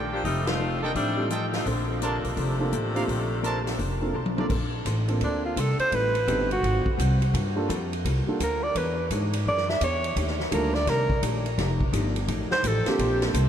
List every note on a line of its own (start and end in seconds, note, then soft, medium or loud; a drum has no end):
0.00 0.20 A#1 medium
0.00 0.13 D#3 soft
0.00 0.13 A3 medium
0.00 0.13 D4 medium
0.00 0.24 F4 medium
0.00 0.14 G4 medium
0.00 0.24 A4 medium
0.00 0.24 D5 medium
0.00 0.24 G5 medium
0.12 0.24 F3 medium
0.12 0.24 A#3 medium
0.12 0.24 D4 medium
0.12 0.24 G4 medium
0.24 0.91 F1 medium
0.24 0.48 F3 soft
0.24 0.46 G3 medium
0.24 0.45 A3 medium
0.24 0.49 A3 soft
0.24 0.46 C4 medium
0.24 0.46 D#4 medium
0.24 0.49 D#4 soft
0.24 0.49 G4 soft
0.24 kick soft
0.24 open hi-hat soft
0.47 0.82 A3 medium
0.47 0.82 C4 medium
0.47 0.82 D#4 medium
0.47 0.82 F4 medium
0.47 snare medium
0.47 ride medium
0.59 0.84 F3 soft
0.59 0.84 A3 medium
0.59 0.84 D#4 medium
0.59 0.84 G4 medium
0.82 0.94 D#3 medium
0.82 0.93 G3 medium
0.82 0.94 A#3 medium
0.82 0.93 D4 medium
0.82 0.91 F4 medium
0.82 0.91 A4 medium
0.82 0.91 D#5 medium
0.82 0.91 G5 medium
0.95 1.62 A1 medium
0.95 1.19 F3 soft
0.95 1.28 G3 medium
0.95 1.28 A3 medium
0.95 1.19 A3 soft
0.95 1.28 C4 medium
0.95 1.28 D4 loud
0.95 1.20 D#4 soft
0.95 1.20 G4 medium
0.95 kick soft
0.95 open hi-hat soft
1.17 1.29 G3 medium
1.17 1.29 C4 medium
1.17 1.29 D#4 medium
1.17 1.29 F4 medium
1.17 1.30 A4 medium
1.30 1.54 F3 medium
1.30 1.55 A3 medium
1.30 1.55 D#4 medium
1.30 1.46 F4 medium
1.30 1.55 G4 medium
1.30 1.46 A4 medium
1.30 1.46 D#5 medium
1.30 1.46 G5 medium
1.30 closed hi-hat medium
1.53 1.65 A3 medium
1.53 1.65 C4 medium
1.53 1.65 D#4 medium
1.53 1.65 F4 medium
1.53 snare medium
1.53 open hi-hat soft
1.66 2.20 A#1 medium
1.66 1.88 D3 medium
1.66 1.88 F3 medium
1.66 1.88 A3 medium
1.66 1.90 A#3 soft
1.66 1.88 C4 medium
1.66 1.91 D4 soft
1.66 1.91 A4 soft
1.66 1.91 C5 soft
1.66 kick soft
1.66 open hi-hat soft
1.89 2.00 D3 medium
1.89 2.01 F3 medium
1.89 2.01 A3 medium
1.89 2.01 C4 medium
2.02 2.35 C3 medium
2.02 2.35 D3 medium
2.02 2.35 F3 medium
2.02 2.35 A#3 medium
2.02 2.26 A#3 medium
2.02 2.17 D4 medium
2.02 2.26 D4 medium
2.02 2.26 A4 medium
2.02 2.18 A#4 medium
2.02 2.17 C5 medium
2.02 2.27 C5 medium
2.02 2.17 A5 medium
2.02 closed hi-hat medium
2.24 2.36 B1 medium
2.24 open hi-hat soft
2.36 2.70 F1 medium
2.36 4.14 C3 medium
2.36 4.15 D3 medium
2.36 4.15 F3 medium
2.36 4.15 A3 medium
2.36 2.61 A#3 soft
2.36 2.61 D4 soft
2.36 2.62 A4 soft
2.36 2.62 C5 medium
2.36 kick soft
2.36 open hi-hat soft
2.59 2.71 A#3 medium
2.59 2.71 C4 medium
2.59 2.71 D4 medium
2.59 2.72 F4 medium
2.59 2.72 A4 medium
2.72 3.05 A1 medium
2.72 2.97 A#3 medium
2.72 2.97 D4 medium
2.72 2.98 A4 medium
2.72 2.98 C5 medium
2.72 closed hi-hat medium
2.95 3.07 A#3 medium
2.95 3.07 C4 soft
2.95 3.04 D4 medium
2.95 3.07 D4 medium
2.95 3.07 F4 medium
2.95 3.07 G4 medium
2.95 3.04 A#4 medium
2.95 3.04 C5 medium
2.95 3.04 F5 medium
2.95 open hi-hat soft
3.08 3.76 A#1 medium
3.08 3.32 A#3 soft
3.08 3.32 D4 soft
3.08 3.33 A4 soft
3.08 3.33 C5 medium
3.08 kick soft
3.08 open hi-hat soft
3.43 3.67 A#3 medium
3.43 3.68 D4 medium
3.43 3.59 D4 medium
3.43 3.68 A4 medium
3.43 3.59 A#4 medium
3.43 3.59 C5 medium
3.43 3.68 C5 medium
3.43 3.59 A5 medium
3.43 closed hi-hat soft
3.67 snare soft
3.67 open hi-hat soft
3.78 4.12 F1 medium
3.78 4.03 A#3 medium
3.78 4.03 D4 soft
3.78 4.04 A4 soft
3.78 4.04 C5 medium
3.78 kick soft
3.78 open hi-hat soft
4.01 4.13 A#3 medium
4.01 4.13 C4 medium
4.01 4.13 D4 medium
4.01 4.13 F4 medium
4.01 4.14 A4 medium
4.14 4.47 B1 medium
4.14 4.38 A#3 medium
4.14 4.39 D4 medium
4.14 4.39 A4 medium
4.14 4.39 C5 medium
4.26 high tom medium
4.37 4.49 A#3 medium
4.37 4.49 C4 medium
4.37 4.46 D4 medium
4.37 4.49 D4 medium
4.37 4.49 F4 soft
4.37 4.49 A4 medium
4.37 4.46 A#4 medium
4.37 4.46 C5 medium
4.37 4.46 D5 medium
4.37 high tom medium
4.50 4.84 A#1 medium
4.50 4.74 A#3 soft
4.50 4.75 D4 soft
4.50 4.75 A4 medium
4.50 4.75 C5 medium
4.50 kick medium
4.50 crash medium
4.85 5.20 A1 medium
4.85 5.10 A#3 medium
4.85 5.10 D4 medium
4.85 5.10 A4 medium
4.85 5.10 C5 medium
4.85 kick soft
4.85 hi-hat pedal soft
4.85 ride medium
5.08 5.54 A#3 medium
5.08 5.54 C4 medium
5.08 5.54 D4 soft
5.08 5.54 F4 medium
5.08 5.55 A4 medium
5.08 ride soft
5.21 5.55 D2 medium
5.21 5.45 A#3 soft
5.21 5.46 D4 soft
5.21 5.44 D4 medium
5.21 5.46 A4 medium
5.21 5.47 C5 medium
5.21 kick soft
5.21 ride medium
5.45 5.61 F4 medium
5.56 5.78 C2 medium
5.56 5.81 A#3 medium
5.56 5.81 D4 medium
5.56 5.81 A4 medium
5.56 5.80 A4 medium
5.56 5.81 C5 medium
5.56 kick soft
5.56 hi-hat pedal medium
5.56 ride medium
5.79 5.97 C5 loud
5.79 muted upright bass stroke soft
5.79 ride soft
5.91 6.26 A1 medium
5.91 6.16 A2 soft
5.91 6.16 G3 soft
5.91 6.16 C4 soft
5.91 6.17 D#4 soft
5.91 6.52 B4 medium
5.91 kick soft
5.91 ride medium
6.15 ride soft
6.28 6.62 G1 loud
6.28 6.52 A2 medium
6.28 6.52 G3 medium
6.28 6.48 B3 medium
6.28 6.48 C4 medium
6.28 6.52 C4 medium
6.28 6.48 D#4 medium
6.28 6.52 D#4 medium
6.28 6.49 G4 medium
6.28 6.49 A4 medium
6.28 kick soft
6.28 hi-hat pedal soft
6.28 ride medium
6.51 6.96 F#4 medium
6.51 ride soft
6.62 6.84 G#1 medium
6.62 6.87 G#2 soft
6.62 6.87 F#3 soft
6.62 6.87 C4 medium
6.62 6.88 F4 medium
6.62 kick soft
6.62 ride medium
6.86 kick medium
6.97 7.33 C2 medium
6.97 7.22 G#2 medium
6.97 7.22 F#3 medium
6.97 7.22 C4 medium
6.97 7.23 F4 medium
6.97 kick soft
6.97 hi-hat pedal medium
6.97 ride medium
7.22 ride soft
7.33 7.68 G2 medium
7.33 7.57 G3 soft
7.33 7.58 A#3 medium
7.33 7.58 F4 medium
7.33 7.59 A4 medium
7.33 kick soft
7.33 ride medium
7.56 7.68 G3 medium
7.56 7.68 A#3 medium
7.56 7.68 D4 medium
7.56 7.68 F4 medium
7.56 7.68 A4 medium
7.69 8.04 F2 loud
7.69 7.93 G3 medium
7.69 7.93 A#3 medium
7.69 7.93 F4 medium
7.69 7.94 A4 medium
7.69 kick soft
7.69 hi-hat pedal soft
7.69 ride medium
7.93 ride soft
8.05 8.26 C2 medium
8.05 8.29 G3 medium
8.05 8.29 A#3 medium
8.05 8.30 F4 medium
8.05 8.30 A4 medium
8.05 kick soft
8.05 ride medium
8.27 8.39 G3 medium
8.27 8.39 A#3 medium
8.27 8.39 D4 medium
8.27 8.39 F4 medium
8.27 8.39 A4 medium
8.27 muted upright bass stroke soft
8.40 8.74 D2 medium
8.40 8.64 G3 medium
8.40 8.65 A#3 medium
8.40 8.65 F4 medium
8.40 8.65 A4 medium
8.40 8.65 A#4 medium
8.40 kick soft
8.40 hi-hat pedal medium
8.40 ride medium
8.63 8.79 D5 loud
8.75 9.10 E2 medium
8.75 8.99 E3 soft
8.75 9.00 D4 soft
8.75 9.01 G#4 soft
8.75 9.12 B4 medium
8.75 9.01 C#5 soft
8.75 kick soft
8.75 ride medium
9.10 9.45 G#2 medium
9.10 9.35 E3 medium
9.10 9.36 D4 medium
9.10 9.36 G#4 medium
9.10 9.36 C#5 medium
9.10 kick soft
9.10 hi-hat pedal soft
9.10 ride medium
9.33 ride medium
9.46 9.80 F#2 medium
9.46 9.70 E3 soft
9.46 9.71 D4 soft
9.46 9.71 G#4 soft
9.46 9.72 C#5 medium
9.46 9.71 D5 medium
9.46 kick soft
9.57 snare soft
9.69 9.85 E5 medium
9.69 snare soft
9.81 10.15 E2 medium
9.81 10.06 E3 medium
9.81 10.06 D4 medium
9.81 10.06 G#4 medium
9.81 10.18 C#5 medium
9.81 10.07 C#5 medium
9.81 kick soft
9.81 hi-hat pedal medium
9.81 ride medium
10.04 ride soft
10.16 10.51 D#2 medium
10.16 10.40 D#3 soft
10.16 10.41 A3 soft
10.16 10.41 D4 soft
10.16 10.41 G4 soft
10.16 kick soft
10.16 ride medium
10.28 snare soft
10.40 snare soft
10.51 10.86 D2 loud
10.51 10.76 D#3 medium
10.51 10.72 G3 medium
10.51 10.76 A3 medium
10.51 10.72 A#3 medium
10.51 10.72 D4 medium
10.51 10.76 D4 medium
10.51 10.73 F4 medium
10.51 10.76 G4 medium
10.51 10.73 A4 medium
10.51 10.76 A#4 medium
10.51 kick soft
10.51 hi-hat pedal soft
10.51 ride medium
10.74 10.91 D5 loud
10.74 snare soft
10.86 11.21 C2 medium
10.86 11.11 D#3 soft
10.86 11.11 A3 soft
10.86 11.11 D4 medium
10.86 11.12 G4 medium
10.86 11.24 A#4 medium
10.86 kick soft
10.86 snare soft
10.86 ride medium
11.10 kick medium
11.22 11.57 A#1 medium
11.22 11.46 D#3 medium
11.22 11.47 A3 medium
11.22 11.47 D4 medium
11.22 11.47 G4 medium
11.22 kick soft
11.22 hi-hat pedal medium
11.22 ride medium
11.46 ride soft
11.58 11.92 F1 medium
11.58 11.82 F3 soft
11.58 11.82 A3 medium
11.58 11.82 D#4 medium
11.58 11.83 G4 medium
11.58 kick soft
11.58 snare soft
11.58 ride medium
11.81 kick medium
11.92 12.27 G1 loud
11.92 12.17 F3 medium
11.92 12.17 A3 medium
11.92 12.17 D#4 medium
11.92 12.17 G4 medium
11.92 kick soft
11.92 hi-hat pedal medium
11.92 ride medium
12.16 ride medium
12.27 12.49 A1 medium
12.27 12.52 F3 medium
12.27 12.52 A3 medium
12.27 12.53 D#4 medium
12.27 12.53 G4 medium
12.27 kick soft
12.27 ride medium
12.51 12.69 C5 medium
12.51 muted upright bass stroke soft
12.51 snare medium
12.63 12.85 A1 medium
12.63 12.87 F3 medium
12.63 12.88 A3 medium
12.63 12.88 D#4 medium
12.63 12.88 G4 medium
12.63 kick soft
12.63 hi-hat pedal medium
12.63 ride medium
12.68 12.90 A4 medium
12.86 13.32 A#3 medium
12.86 13.32 C4 medium
12.86 13.32 D4 medium
12.86 13.32 F4 medium
12.86 13.23 G4 medium
12.86 13.32 A4 medium
12.86 muted upright bass stroke soft
12.86 snare medium
12.86 ride soft
12.99 13.33 A#1 medium
12.99 13.23 A#3 soft
12.99 13.23 D4 soft
12.99 13.24 A4 soft
12.99 13.24 C5 medium
12.99 kick soft
12.99 ride medium
13.22 snare soft
13.22 ride soft
13.34 13.49 C2 loud
13.34 13.49 A#3 medium
13.34 13.49 D4 medium
13.34 13.49 A4 medium
13.34 13.49 C5 medium
13.34 kick soft
13.34 hi-hat pedal medium
13.34 ride medium